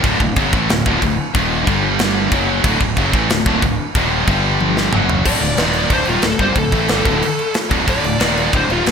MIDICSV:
0, 0, Header, 1, 5, 480
1, 0, Start_track
1, 0, Tempo, 326442
1, 66, Time_signature, 4, 2, 24, 8
1, 13107, End_track
2, 0, Start_track
2, 0, Title_t, "Lead electric guitar"
2, 0, Program_c, 0, 29
2, 7738, Note_on_c, 0, 74, 99
2, 8670, Note_off_c, 0, 74, 0
2, 8721, Note_on_c, 0, 72, 85
2, 8943, Note_off_c, 0, 72, 0
2, 8950, Note_on_c, 0, 65, 76
2, 9178, Note_off_c, 0, 65, 0
2, 9200, Note_on_c, 0, 69, 78
2, 9415, Note_off_c, 0, 69, 0
2, 9421, Note_on_c, 0, 72, 82
2, 9653, Note_off_c, 0, 72, 0
2, 9682, Note_on_c, 0, 69, 100
2, 11071, Note_off_c, 0, 69, 0
2, 11612, Note_on_c, 0, 74, 108
2, 12532, Note_off_c, 0, 74, 0
2, 12594, Note_on_c, 0, 72, 95
2, 12804, Note_off_c, 0, 72, 0
2, 12821, Note_on_c, 0, 65, 86
2, 13038, Note_off_c, 0, 65, 0
2, 13107, End_track
3, 0, Start_track
3, 0, Title_t, "Distorted electric guitar"
3, 0, Program_c, 1, 30
3, 49, Note_on_c, 1, 38, 87
3, 62, Note_on_c, 1, 45, 112
3, 71, Note_on_c, 1, 50, 101
3, 290, Note_off_c, 1, 38, 0
3, 296, Note_off_c, 1, 45, 0
3, 301, Note_off_c, 1, 50, 0
3, 307, Note_on_c, 1, 38, 62
3, 312, Note_on_c, 1, 45, 68
3, 498, Note_off_c, 1, 38, 0
3, 501, Note_off_c, 1, 45, 0
3, 534, Note_on_c, 1, 42, 92
3, 540, Note_on_c, 1, 49, 92
3, 540, Note_on_c, 1, 54, 95
3, 772, Note_off_c, 1, 42, 0
3, 775, Note_off_c, 1, 49, 0
3, 775, Note_off_c, 1, 54, 0
3, 795, Note_on_c, 1, 45, 85
3, 802, Note_on_c, 1, 52, 107
3, 811, Note_on_c, 1, 57, 98
3, 1004, Note_off_c, 1, 45, 0
3, 1013, Note_on_c, 1, 38, 61
3, 1016, Note_off_c, 1, 52, 0
3, 1022, Note_on_c, 1, 45, 72
3, 1030, Note_off_c, 1, 57, 0
3, 1210, Note_off_c, 1, 38, 0
3, 1215, Note_off_c, 1, 45, 0
3, 1275, Note_on_c, 1, 38, 96
3, 1287, Note_on_c, 1, 45, 103
3, 1290, Note_on_c, 1, 50, 97
3, 1487, Note_off_c, 1, 38, 0
3, 1490, Note_off_c, 1, 45, 0
3, 1505, Note_on_c, 1, 38, 66
3, 1508, Note_on_c, 1, 45, 72
3, 1510, Note_off_c, 1, 50, 0
3, 1696, Note_off_c, 1, 38, 0
3, 1697, Note_off_c, 1, 45, 0
3, 1972, Note_on_c, 1, 39, 102
3, 1982, Note_on_c, 1, 51, 113
3, 1989, Note_on_c, 1, 46, 100
3, 2448, Note_off_c, 1, 46, 0
3, 2448, Note_on_c, 1, 50, 100
3, 2454, Note_off_c, 1, 39, 0
3, 2454, Note_on_c, 1, 43, 91
3, 2461, Note_off_c, 1, 51, 0
3, 2461, Note_on_c, 1, 55, 105
3, 3404, Note_off_c, 1, 43, 0
3, 3406, Note_off_c, 1, 50, 0
3, 3410, Note_on_c, 1, 42, 95
3, 3413, Note_off_c, 1, 55, 0
3, 3421, Note_on_c, 1, 49, 93
3, 3429, Note_on_c, 1, 54, 98
3, 3887, Note_off_c, 1, 42, 0
3, 3893, Note_off_c, 1, 49, 0
3, 3897, Note_off_c, 1, 54, 0
3, 3900, Note_on_c, 1, 38, 105
3, 3908, Note_on_c, 1, 50, 115
3, 3909, Note_on_c, 1, 45, 105
3, 4132, Note_off_c, 1, 38, 0
3, 4133, Note_off_c, 1, 45, 0
3, 4137, Note_off_c, 1, 50, 0
3, 4148, Note_on_c, 1, 38, 72
3, 4150, Note_on_c, 1, 45, 68
3, 4335, Note_off_c, 1, 38, 0
3, 4337, Note_off_c, 1, 45, 0
3, 4383, Note_on_c, 1, 42, 93
3, 4386, Note_on_c, 1, 49, 106
3, 4395, Note_on_c, 1, 54, 104
3, 4614, Note_off_c, 1, 42, 0
3, 4615, Note_off_c, 1, 49, 0
3, 4620, Note_off_c, 1, 54, 0
3, 4625, Note_on_c, 1, 45, 91
3, 4633, Note_on_c, 1, 52, 90
3, 4639, Note_on_c, 1, 57, 109
3, 4855, Note_off_c, 1, 45, 0
3, 4858, Note_off_c, 1, 52, 0
3, 4861, Note_off_c, 1, 57, 0
3, 4869, Note_on_c, 1, 38, 66
3, 4872, Note_on_c, 1, 45, 79
3, 5056, Note_off_c, 1, 38, 0
3, 5057, Note_off_c, 1, 45, 0
3, 5093, Note_on_c, 1, 38, 94
3, 5100, Note_on_c, 1, 45, 104
3, 5111, Note_on_c, 1, 50, 102
3, 5317, Note_off_c, 1, 38, 0
3, 5321, Note_off_c, 1, 45, 0
3, 5335, Note_on_c, 1, 38, 70
3, 5337, Note_off_c, 1, 50, 0
3, 5339, Note_on_c, 1, 45, 78
3, 5528, Note_off_c, 1, 38, 0
3, 5530, Note_off_c, 1, 45, 0
3, 5823, Note_on_c, 1, 39, 107
3, 5832, Note_on_c, 1, 46, 114
3, 5841, Note_on_c, 1, 51, 105
3, 6293, Note_off_c, 1, 39, 0
3, 6297, Note_off_c, 1, 46, 0
3, 6302, Note_off_c, 1, 51, 0
3, 6306, Note_on_c, 1, 43, 87
3, 6314, Note_on_c, 1, 50, 102
3, 6316, Note_on_c, 1, 55, 101
3, 7234, Note_off_c, 1, 43, 0
3, 7240, Note_on_c, 1, 42, 88
3, 7244, Note_off_c, 1, 55, 0
3, 7245, Note_off_c, 1, 50, 0
3, 7250, Note_on_c, 1, 54, 101
3, 7251, Note_on_c, 1, 49, 90
3, 7709, Note_off_c, 1, 42, 0
3, 7715, Note_on_c, 1, 38, 91
3, 7720, Note_off_c, 1, 49, 0
3, 7721, Note_off_c, 1, 54, 0
3, 7726, Note_on_c, 1, 45, 98
3, 7727, Note_on_c, 1, 50, 97
3, 7928, Note_off_c, 1, 38, 0
3, 7937, Note_off_c, 1, 45, 0
3, 7946, Note_on_c, 1, 38, 60
3, 7955, Note_on_c, 1, 45, 69
3, 7965, Note_off_c, 1, 50, 0
3, 8154, Note_off_c, 1, 38, 0
3, 8158, Note_off_c, 1, 45, 0
3, 8199, Note_on_c, 1, 39, 93
3, 8207, Note_on_c, 1, 46, 91
3, 8218, Note_on_c, 1, 51, 101
3, 8681, Note_off_c, 1, 39, 0
3, 8686, Note_off_c, 1, 46, 0
3, 8691, Note_off_c, 1, 51, 0
3, 8698, Note_on_c, 1, 38, 91
3, 8710, Note_on_c, 1, 45, 93
3, 8722, Note_on_c, 1, 50, 97
3, 8926, Note_off_c, 1, 38, 0
3, 8932, Note_on_c, 1, 39, 88
3, 8937, Note_off_c, 1, 45, 0
3, 8943, Note_off_c, 1, 50, 0
3, 8951, Note_on_c, 1, 46, 87
3, 8951, Note_on_c, 1, 51, 95
3, 9152, Note_off_c, 1, 39, 0
3, 9158, Note_on_c, 1, 38, 62
3, 9165, Note_off_c, 1, 46, 0
3, 9171, Note_on_c, 1, 45, 66
3, 9178, Note_off_c, 1, 51, 0
3, 9361, Note_off_c, 1, 38, 0
3, 9367, Note_off_c, 1, 45, 0
3, 9399, Note_on_c, 1, 43, 94
3, 9407, Note_on_c, 1, 50, 92
3, 9423, Note_on_c, 1, 55, 99
3, 9642, Note_off_c, 1, 43, 0
3, 9646, Note_off_c, 1, 50, 0
3, 9654, Note_off_c, 1, 55, 0
3, 9659, Note_on_c, 1, 38, 67
3, 9661, Note_on_c, 1, 45, 75
3, 9852, Note_off_c, 1, 38, 0
3, 9853, Note_off_c, 1, 45, 0
3, 9886, Note_on_c, 1, 45, 87
3, 9887, Note_on_c, 1, 52, 95
3, 9891, Note_on_c, 1, 57, 104
3, 10116, Note_off_c, 1, 45, 0
3, 10122, Note_on_c, 1, 43, 91
3, 10127, Note_off_c, 1, 52, 0
3, 10129, Note_off_c, 1, 57, 0
3, 10135, Note_on_c, 1, 50, 96
3, 10142, Note_on_c, 1, 55, 97
3, 10345, Note_off_c, 1, 43, 0
3, 10345, Note_off_c, 1, 50, 0
3, 10350, Note_on_c, 1, 38, 96
3, 10356, Note_off_c, 1, 55, 0
3, 10362, Note_on_c, 1, 50, 100
3, 10365, Note_on_c, 1, 45, 93
3, 10599, Note_off_c, 1, 38, 0
3, 10605, Note_off_c, 1, 50, 0
3, 10607, Note_off_c, 1, 45, 0
3, 11316, Note_on_c, 1, 38, 84
3, 11327, Note_on_c, 1, 45, 92
3, 11336, Note_on_c, 1, 50, 98
3, 11549, Note_off_c, 1, 38, 0
3, 11562, Note_off_c, 1, 45, 0
3, 11562, Note_off_c, 1, 50, 0
3, 11567, Note_on_c, 1, 38, 96
3, 11579, Note_on_c, 1, 45, 102
3, 11580, Note_on_c, 1, 50, 104
3, 11809, Note_off_c, 1, 38, 0
3, 11815, Note_off_c, 1, 45, 0
3, 11815, Note_off_c, 1, 50, 0
3, 11831, Note_on_c, 1, 38, 63
3, 11840, Note_on_c, 1, 45, 68
3, 12020, Note_off_c, 1, 38, 0
3, 12025, Note_off_c, 1, 45, 0
3, 12051, Note_on_c, 1, 39, 88
3, 12056, Note_on_c, 1, 46, 93
3, 12064, Note_on_c, 1, 51, 96
3, 12533, Note_off_c, 1, 39, 0
3, 12535, Note_off_c, 1, 46, 0
3, 12539, Note_off_c, 1, 51, 0
3, 12546, Note_on_c, 1, 38, 90
3, 12550, Note_on_c, 1, 45, 91
3, 12567, Note_on_c, 1, 50, 95
3, 12780, Note_off_c, 1, 38, 0
3, 12782, Note_off_c, 1, 45, 0
3, 12788, Note_on_c, 1, 39, 90
3, 12791, Note_off_c, 1, 50, 0
3, 12799, Note_on_c, 1, 46, 92
3, 12807, Note_on_c, 1, 51, 101
3, 13021, Note_off_c, 1, 39, 0
3, 13027, Note_off_c, 1, 46, 0
3, 13027, Note_on_c, 1, 38, 60
3, 13031, Note_off_c, 1, 51, 0
3, 13035, Note_on_c, 1, 45, 72
3, 13107, Note_off_c, 1, 38, 0
3, 13107, Note_off_c, 1, 45, 0
3, 13107, End_track
4, 0, Start_track
4, 0, Title_t, "Fingered electric bass"
4, 0, Program_c, 2, 33
4, 58, Note_on_c, 2, 26, 91
4, 285, Note_off_c, 2, 26, 0
4, 295, Note_on_c, 2, 26, 86
4, 523, Note_off_c, 2, 26, 0
4, 536, Note_on_c, 2, 30, 95
4, 763, Note_off_c, 2, 30, 0
4, 783, Note_on_c, 2, 33, 98
4, 1006, Note_off_c, 2, 33, 0
4, 1038, Note_on_c, 2, 26, 81
4, 1254, Note_off_c, 2, 26, 0
4, 1270, Note_on_c, 2, 26, 92
4, 1490, Note_off_c, 2, 26, 0
4, 1508, Note_on_c, 2, 26, 80
4, 1729, Note_off_c, 2, 26, 0
4, 1984, Note_on_c, 2, 27, 94
4, 2429, Note_off_c, 2, 27, 0
4, 2458, Note_on_c, 2, 31, 98
4, 3360, Note_off_c, 2, 31, 0
4, 3409, Note_on_c, 2, 30, 99
4, 3860, Note_off_c, 2, 30, 0
4, 3883, Note_on_c, 2, 26, 96
4, 4114, Note_off_c, 2, 26, 0
4, 4127, Note_on_c, 2, 26, 86
4, 4356, Note_off_c, 2, 26, 0
4, 4373, Note_on_c, 2, 30, 100
4, 4594, Note_off_c, 2, 30, 0
4, 4602, Note_on_c, 2, 33, 104
4, 4833, Note_off_c, 2, 33, 0
4, 4842, Note_on_c, 2, 26, 87
4, 5073, Note_off_c, 2, 26, 0
4, 5081, Note_on_c, 2, 26, 98
4, 5312, Note_off_c, 2, 26, 0
4, 5332, Note_on_c, 2, 26, 81
4, 5558, Note_off_c, 2, 26, 0
4, 5810, Note_on_c, 2, 27, 95
4, 6260, Note_off_c, 2, 27, 0
4, 6285, Note_on_c, 2, 31, 97
4, 7192, Note_off_c, 2, 31, 0
4, 7260, Note_on_c, 2, 30, 92
4, 7705, Note_off_c, 2, 30, 0
4, 7733, Note_on_c, 2, 26, 86
4, 7952, Note_off_c, 2, 26, 0
4, 7960, Note_on_c, 2, 26, 78
4, 8192, Note_off_c, 2, 26, 0
4, 8214, Note_on_c, 2, 27, 95
4, 8663, Note_off_c, 2, 27, 0
4, 8677, Note_on_c, 2, 26, 91
4, 8910, Note_off_c, 2, 26, 0
4, 8935, Note_on_c, 2, 27, 81
4, 9152, Note_off_c, 2, 27, 0
4, 9161, Note_on_c, 2, 26, 74
4, 9385, Note_off_c, 2, 26, 0
4, 9393, Note_on_c, 2, 31, 89
4, 9629, Note_off_c, 2, 31, 0
4, 9641, Note_on_c, 2, 26, 74
4, 9873, Note_off_c, 2, 26, 0
4, 9886, Note_on_c, 2, 33, 98
4, 10116, Note_off_c, 2, 33, 0
4, 10141, Note_on_c, 2, 31, 96
4, 10364, Note_off_c, 2, 31, 0
4, 10373, Note_on_c, 2, 26, 94
4, 10601, Note_off_c, 2, 26, 0
4, 11333, Note_on_c, 2, 26, 96
4, 11562, Note_off_c, 2, 26, 0
4, 11585, Note_on_c, 2, 26, 94
4, 11808, Note_off_c, 2, 26, 0
4, 11819, Note_on_c, 2, 26, 84
4, 12046, Note_off_c, 2, 26, 0
4, 12058, Note_on_c, 2, 27, 89
4, 12509, Note_off_c, 2, 27, 0
4, 12548, Note_on_c, 2, 26, 96
4, 12771, Note_off_c, 2, 26, 0
4, 12786, Note_on_c, 2, 27, 86
4, 13011, Note_off_c, 2, 27, 0
4, 13025, Note_on_c, 2, 26, 74
4, 13107, Note_off_c, 2, 26, 0
4, 13107, End_track
5, 0, Start_track
5, 0, Title_t, "Drums"
5, 54, Note_on_c, 9, 49, 69
5, 56, Note_on_c, 9, 36, 121
5, 201, Note_off_c, 9, 49, 0
5, 204, Note_off_c, 9, 36, 0
5, 296, Note_on_c, 9, 36, 88
5, 443, Note_off_c, 9, 36, 0
5, 529, Note_on_c, 9, 49, 62
5, 537, Note_on_c, 9, 36, 108
5, 677, Note_off_c, 9, 49, 0
5, 684, Note_off_c, 9, 36, 0
5, 779, Note_on_c, 9, 36, 110
5, 926, Note_off_c, 9, 36, 0
5, 1020, Note_on_c, 9, 49, 60
5, 1035, Note_on_c, 9, 38, 115
5, 1167, Note_off_c, 9, 49, 0
5, 1182, Note_off_c, 9, 38, 0
5, 1264, Note_on_c, 9, 36, 113
5, 1411, Note_off_c, 9, 36, 0
5, 1502, Note_on_c, 9, 36, 88
5, 1511, Note_on_c, 9, 49, 62
5, 1649, Note_off_c, 9, 36, 0
5, 1658, Note_off_c, 9, 49, 0
5, 1982, Note_on_c, 9, 36, 124
5, 1993, Note_on_c, 9, 49, 66
5, 2129, Note_off_c, 9, 36, 0
5, 2140, Note_off_c, 9, 49, 0
5, 2459, Note_on_c, 9, 36, 105
5, 2470, Note_on_c, 9, 49, 64
5, 2606, Note_off_c, 9, 36, 0
5, 2617, Note_off_c, 9, 49, 0
5, 2926, Note_on_c, 9, 49, 68
5, 2940, Note_on_c, 9, 38, 113
5, 3073, Note_off_c, 9, 49, 0
5, 3087, Note_off_c, 9, 38, 0
5, 3409, Note_on_c, 9, 36, 106
5, 3417, Note_on_c, 9, 49, 69
5, 3556, Note_off_c, 9, 36, 0
5, 3564, Note_off_c, 9, 49, 0
5, 3884, Note_on_c, 9, 36, 117
5, 3890, Note_on_c, 9, 49, 75
5, 4031, Note_off_c, 9, 36, 0
5, 4037, Note_off_c, 9, 49, 0
5, 4126, Note_on_c, 9, 36, 89
5, 4273, Note_off_c, 9, 36, 0
5, 4363, Note_on_c, 9, 49, 68
5, 4366, Note_on_c, 9, 36, 105
5, 4510, Note_off_c, 9, 49, 0
5, 4513, Note_off_c, 9, 36, 0
5, 4609, Note_on_c, 9, 36, 118
5, 4756, Note_off_c, 9, 36, 0
5, 4848, Note_on_c, 9, 49, 64
5, 4863, Note_on_c, 9, 38, 116
5, 4995, Note_off_c, 9, 49, 0
5, 5010, Note_off_c, 9, 38, 0
5, 5088, Note_on_c, 9, 36, 114
5, 5235, Note_off_c, 9, 36, 0
5, 5329, Note_on_c, 9, 36, 97
5, 5337, Note_on_c, 9, 49, 60
5, 5476, Note_off_c, 9, 36, 0
5, 5484, Note_off_c, 9, 49, 0
5, 5809, Note_on_c, 9, 36, 113
5, 5822, Note_on_c, 9, 49, 67
5, 5956, Note_off_c, 9, 36, 0
5, 5969, Note_off_c, 9, 49, 0
5, 6288, Note_on_c, 9, 36, 107
5, 6290, Note_on_c, 9, 49, 67
5, 6435, Note_off_c, 9, 36, 0
5, 6437, Note_off_c, 9, 49, 0
5, 6772, Note_on_c, 9, 48, 67
5, 6919, Note_off_c, 9, 48, 0
5, 7016, Note_on_c, 9, 38, 72
5, 7163, Note_off_c, 9, 38, 0
5, 7243, Note_on_c, 9, 45, 96
5, 7390, Note_off_c, 9, 45, 0
5, 7492, Note_on_c, 9, 43, 98
5, 7639, Note_off_c, 9, 43, 0
5, 7727, Note_on_c, 9, 36, 109
5, 7729, Note_on_c, 9, 49, 90
5, 7729, Note_on_c, 9, 57, 118
5, 7874, Note_off_c, 9, 36, 0
5, 7876, Note_off_c, 9, 49, 0
5, 7876, Note_off_c, 9, 57, 0
5, 7981, Note_on_c, 9, 49, 58
5, 8128, Note_off_c, 9, 49, 0
5, 8195, Note_on_c, 9, 49, 81
5, 8209, Note_on_c, 9, 38, 111
5, 8342, Note_off_c, 9, 49, 0
5, 8356, Note_off_c, 9, 38, 0
5, 8431, Note_on_c, 9, 49, 59
5, 8578, Note_off_c, 9, 49, 0
5, 8673, Note_on_c, 9, 49, 78
5, 8679, Note_on_c, 9, 36, 104
5, 8820, Note_off_c, 9, 49, 0
5, 8826, Note_off_c, 9, 36, 0
5, 8902, Note_on_c, 9, 49, 58
5, 9049, Note_off_c, 9, 49, 0
5, 9145, Note_on_c, 9, 49, 80
5, 9160, Note_on_c, 9, 38, 112
5, 9292, Note_off_c, 9, 49, 0
5, 9307, Note_off_c, 9, 38, 0
5, 9399, Note_on_c, 9, 49, 55
5, 9400, Note_on_c, 9, 36, 97
5, 9546, Note_off_c, 9, 49, 0
5, 9547, Note_off_c, 9, 36, 0
5, 9642, Note_on_c, 9, 36, 108
5, 9647, Note_on_c, 9, 49, 84
5, 9789, Note_off_c, 9, 36, 0
5, 9794, Note_off_c, 9, 49, 0
5, 9886, Note_on_c, 9, 36, 100
5, 9887, Note_on_c, 9, 49, 54
5, 10033, Note_off_c, 9, 36, 0
5, 10034, Note_off_c, 9, 49, 0
5, 10122, Note_on_c, 9, 49, 77
5, 10137, Note_on_c, 9, 38, 102
5, 10269, Note_off_c, 9, 49, 0
5, 10284, Note_off_c, 9, 38, 0
5, 10373, Note_on_c, 9, 36, 105
5, 10383, Note_on_c, 9, 49, 60
5, 10520, Note_off_c, 9, 36, 0
5, 10530, Note_off_c, 9, 49, 0
5, 10623, Note_on_c, 9, 49, 84
5, 10770, Note_off_c, 9, 49, 0
5, 10863, Note_on_c, 9, 49, 61
5, 11010, Note_off_c, 9, 49, 0
5, 11089, Note_on_c, 9, 49, 83
5, 11103, Note_on_c, 9, 38, 105
5, 11236, Note_off_c, 9, 49, 0
5, 11250, Note_off_c, 9, 38, 0
5, 11338, Note_on_c, 9, 36, 102
5, 11350, Note_on_c, 9, 49, 59
5, 11485, Note_off_c, 9, 36, 0
5, 11497, Note_off_c, 9, 49, 0
5, 11583, Note_on_c, 9, 36, 112
5, 11593, Note_on_c, 9, 49, 84
5, 11730, Note_off_c, 9, 36, 0
5, 11740, Note_off_c, 9, 49, 0
5, 11826, Note_on_c, 9, 49, 61
5, 11973, Note_off_c, 9, 49, 0
5, 12056, Note_on_c, 9, 49, 87
5, 12071, Note_on_c, 9, 38, 112
5, 12203, Note_off_c, 9, 49, 0
5, 12218, Note_off_c, 9, 38, 0
5, 12313, Note_on_c, 9, 49, 61
5, 12460, Note_off_c, 9, 49, 0
5, 12546, Note_on_c, 9, 36, 103
5, 12554, Note_on_c, 9, 49, 76
5, 12693, Note_off_c, 9, 36, 0
5, 12701, Note_off_c, 9, 49, 0
5, 12792, Note_on_c, 9, 49, 55
5, 12939, Note_off_c, 9, 49, 0
5, 13031, Note_on_c, 9, 49, 78
5, 13046, Note_on_c, 9, 38, 106
5, 13107, Note_off_c, 9, 38, 0
5, 13107, Note_off_c, 9, 49, 0
5, 13107, End_track
0, 0, End_of_file